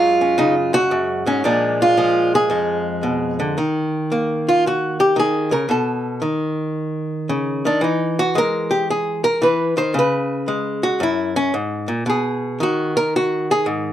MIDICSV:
0, 0, Header, 1, 2, 480
1, 0, Start_track
1, 0, Key_signature, -6, "minor"
1, 0, Tempo, 531915
1, 1283, Time_signature, 4, 2, 24, 8
1, 12569, End_track
2, 0, Start_track
2, 0, Title_t, "Hollow-body jazz guitar"
2, 0, Program_c, 0, 26
2, 0, Note_on_c, 0, 42, 64
2, 0, Note_on_c, 0, 54, 70
2, 0, Note_on_c, 0, 56, 43
2, 0, Note_on_c, 0, 65, 92
2, 0, Note_on_c, 0, 66, 89
2, 178, Note_off_c, 0, 66, 0
2, 191, Note_on_c, 0, 61, 46
2, 334, Note_off_c, 0, 61, 0
2, 341, Note_on_c, 0, 49, 72
2, 348, Note_on_c, 0, 63, 76
2, 489, Note_off_c, 0, 63, 0
2, 656, Note_off_c, 0, 65, 0
2, 668, Note_on_c, 0, 66, 103
2, 807, Note_off_c, 0, 42, 0
2, 823, Note_on_c, 0, 42, 65
2, 1138, Note_off_c, 0, 42, 0
2, 1141, Note_on_c, 0, 44, 61
2, 1148, Note_on_c, 0, 61, 73
2, 1271, Note_off_c, 0, 54, 0
2, 1275, Note_off_c, 0, 49, 0
2, 1290, Note_off_c, 0, 44, 0
2, 1293, Note_off_c, 0, 56, 0
2, 1294, Note_off_c, 0, 61, 0
2, 1294, Note_off_c, 0, 66, 0
2, 1300, Note_on_c, 0, 46, 63
2, 1308, Note_on_c, 0, 53, 45
2, 1310, Note_on_c, 0, 62, 77
2, 1319, Note_on_c, 0, 56, 45
2, 1642, Note_on_c, 0, 65, 93
2, 1771, Note_off_c, 0, 53, 0
2, 1778, Note_off_c, 0, 56, 0
2, 1782, Note_on_c, 0, 53, 68
2, 1789, Note_on_c, 0, 56, 45
2, 2100, Note_off_c, 0, 62, 0
2, 2105, Note_off_c, 0, 65, 0
2, 2121, Note_on_c, 0, 68, 96
2, 2251, Note_off_c, 0, 56, 0
2, 2252, Note_off_c, 0, 46, 0
2, 2253, Note_on_c, 0, 41, 58
2, 2262, Note_on_c, 0, 56, 50
2, 2734, Note_on_c, 0, 47, 57
2, 3054, Note_off_c, 0, 47, 0
2, 3065, Note_on_c, 0, 50, 63
2, 3195, Note_off_c, 0, 53, 0
2, 3209, Note_off_c, 0, 41, 0
2, 3212, Note_off_c, 0, 50, 0
2, 3214, Note_off_c, 0, 56, 0
2, 3221, Note_off_c, 0, 68, 0
2, 3228, Note_on_c, 0, 51, 65
2, 3714, Note_on_c, 0, 58, 62
2, 4047, Note_on_c, 0, 65, 79
2, 4184, Note_off_c, 0, 65, 0
2, 4217, Note_on_c, 0, 66, 71
2, 4508, Note_off_c, 0, 66, 0
2, 4512, Note_on_c, 0, 67, 86
2, 4646, Note_off_c, 0, 51, 0
2, 4656, Note_off_c, 0, 67, 0
2, 4657, Note_on_c, 0, 51, 59
2, 4688, Note_on_c, 0, 68, 81
2, 4975, Note_on_c, 0, 49, 56
2, 4976, Note_off_c, 0, 51, 0
2, 4980, Note_off_c, 0, 68, 0
2, 4984, Note_on_c, 0, 70, 77
2, 5122, Note_off_c, 0, 58, 0
2, 5128, Note_off_c, 0, 49, 0
2, 5130, Note_off_c, 0, 70, 0
2, 5132, Note_on_c, 0, 47, 65
2, 5151, Note_on_c, 0, 69, 66
2, 5609, Note_off_c, 0, 47, 0
2, 5609, Note_on_c, 0, 51, 53
2, 5619, Note_off_c, 0, 69, 0
2, 6582, Note_on_c, 0, 49, 62
2, 6893, Note_off_c, 0, 51, 0
2, 6899, Note_off_c, 0, 49, 0
2, 6905, Note_on_c, 0, 51, 56
2, 6917, Note_on_c, 0, 62, 78
2, 7048, Note_on_c, 0, 52, 63
2, 7054, Note_off_c, 0, 51, 0
2, 7060, Note_off_c, 0, 62, 0
2, 7073, Note_on_c, 0, 63, 53
2, 7384, Note_off_c, 0, 63, 0
2, 7392, Note_on_c, 0, 66, 94
2, 7537, Note_off_c, 0, 66, 0
2, 7537, Note_on_c, 0, 56, 64
2, 7562, Note_on_c, 0, 70, 97
2, 7856, Note_on_c, 0, 67, 80
2, 7869, Note_off_c, 0, 70, 0
2, 8009, Note_off_c, 0, 67, 0
2, 8035, Note_on_c, 0, 68, 75
2, 8335, Note_off_c, 0, 68, 0
2, 8338, Note_on_c, 0, 70, 98
2, 8487, Note_off_c, 0, 52, 0
2, 8490, Note_off_c, 0, 70, 0
2, 8491, Note_off_c, 0, 56, 0
2, 8497, Note_on_c, 0, 52, 68
2, 8512, Note_on_c, 0, 71, 78
2, 8811, Note_off_c, 0, 52, 0
2, 8815, Note_on_c, 0, 51, 58
2, 8821, Note_off_c, 0, 71, 0
2, 8824, Note_on_c, 0, 72, 87
2, 8968, Note_off_c, 0, 51, 0
2, 8971, Note_on_c, 0, 49, 72
2, 8972, Note_off_c, 0, 72, 0
2, 9012, Note_on_c, 0, 71, 78
2, 9455, Note_on_c, 0, 56, 60
2, 9775, Note_on_c, 0, 66, 85
2, 9792, Note_off_c, 0, 71, 0
2, 9908, Note_off_c, 0, 49, 0
2, 9911, Note_off_c, 0, 56, 0
2, 9926, Note_on_c, 0, 42, 69
2, 9927, Note_off_c, 0, 66, 0
2, 9954, Note_on_c, 0, 64, 81
2, 10250, Note_off_c, 0, 64, 0
2, 10253, Note_on_c, 0, 61, 88
2, 10404, Note_off_c, 0, 42, 0
2, 10406, Note_off_c, 0, 61, 0
2, 10412, Note_on_c, 0, 44, 61
2, 10720, Note_on_c, 0, 46, 56
2, 10731, Note_off_c, 0, 44, 0
2, 10879, Note_off_c, 0, 46, 0
2, 10883, Note_on_c, 0, 47, 62
2, 10914, Note_on_c, 0, 68, 69
2, 11361, Note_off_c, 0, 47, 0
2, 11372, Note_on_c, 0, 51, 62
2, 11377, Note_off_c, 0, 68, 0
2, 11398, Note_on_c, 0, 66, 77
2, 11698, Note_off_c, 0, 66, 0
2, 11702, Note_on_c, 0, 70, 99
2, 11848, Note_off_c, 0, 70, 0
2, 11876, Note_on_c, 0, 66, 88
2, 12182, Note_off_c, 0, 66, 0
2, 12193, Note_on_c, 0, 68, 86
2, 12327, Note_on_c, 0, 44, 66
2, 12333, Note_off_c, 0, 68, 0
2, 12569, Note_off_c, 0, 44, 0
2, 12569, Note_off_c, 0, 51, 0
2, 12569, End_track
0, 0, End_of_file